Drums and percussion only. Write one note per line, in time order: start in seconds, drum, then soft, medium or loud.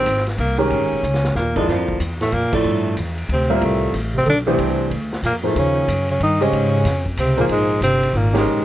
0.06 hi-hat pedal soft
0.06 ride medium
0.17 snare soft
0.27 snare soft
0.27 ride soft
0.38 ride medium
0.70 ride medium
1.03 hi-hat pedal medium
1.14 snare medium
1.24 snare medium
1.35 snare medium
1.56 kick medium
1.56 crash medium
1.68 snare soft
1.88 kick medium
2.00 hi-hat pedal medium
2.00 ride medium
2.21 snare soft
2.21 ride soft
2.32 ride medium
2.53 kick medium
2.53 crash medium
2.97 hi-hat pedal medium
2.97 ride medium
3.18 ride soft
3.29 ride medium
3.61 ride medium
3.94 hi-hat pedal soft
3.94 ride medium
4.26 ride medium
4.59 ride medium
4.91 ride medium
5.13 snare medium
5.23 hi-hat pedal medium
5.23 ride medium
5.56 ride medium
5.88 hi-hat pedal medium
5.88 ride medium
6.09 ride soft
6.20 ride medium
6.42 ride soft
6.53 ride medium
6.85 snare soft
6.85 hi-hat pedal soft
6.85 ride medium
7.06 kick soft
7.17 hi-hat pedal medium
7.17 ride medium
7.38 ride soft
7.49 ride medium
7.82 hi-hat pedal soft
7.82 ride medium
8.03 ride medium
8.35 snare medium
8.35 ride medium